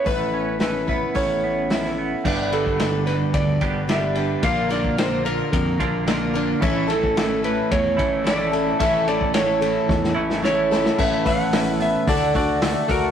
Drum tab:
CC |----------------|x---------------|----------------|----------------|
RD |----------------|--x-x-x-x-x-x-x-|x-x-x-x-x-x-x-x-|x-x-x-x-x-x-x-x-|
HH |o---o---o---o---|----------------|----------------|----------------|
SD |----o-------oo--|----o-o-----o---|--o-o-------o---|--o-o-------o---|
BD |o-----o-o-------|o--o----o-o-----|o--o----o-o-----|o--o----o-o-----|

CC |----------------|x---------------|
RD |x-x-x-x---------|----------------|
HH |----------------|--o-o-o-o-o-o-o-|
SD |----o---oo-oo-oo|----o-------o---|
BD |o--o----o-------|o-o-----o-o---o-|